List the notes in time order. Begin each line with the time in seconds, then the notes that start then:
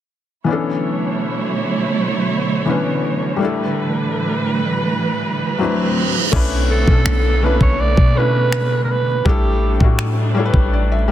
0.44 B2 D3 E3 F#3 A3 B3 C#4 E4 C#5
0.50 D4 A4
2.65 E3 B3 C#4 D4
2.69 B4
3.36 G3 A3
3.40 A2 E3 G3 D4 E4 B4
3.44 A4
4.86 reverse cymbal
5.58 D2 A2 F#3 C4 D4 E4
5.63 B4
6.32 B1 D3 A3 B3 C#4 D4 E4, kick, crash, downlifter
6.36 B4
6.71 A4
6.87 B2 A3 C#4 D4 E4, kick
6.91 A4
7.06 B1, finger snap
7.42 A3 C#4 D4 E4 B4
7.46 B4
7.61 B1 C#5, kick
7.80 D5
7.97 B2, kick
8.15 A3 C#4 D4 E4 B4
8.19 B4
8.52 finger snap
8.84 A#4
8.91 B4
9.25 A1 G3 A3 D4 E4 G4, kick
9.29 A4
9.80 A2 G3 A3 D4 E4 F#4, kick
9.99 finger snap
10.35 G3 A3 D4 E4 C#5
10.39 A4
10.45 B4
10.54 A1, kick
10.73 D5
10.92 E5
11.08 G3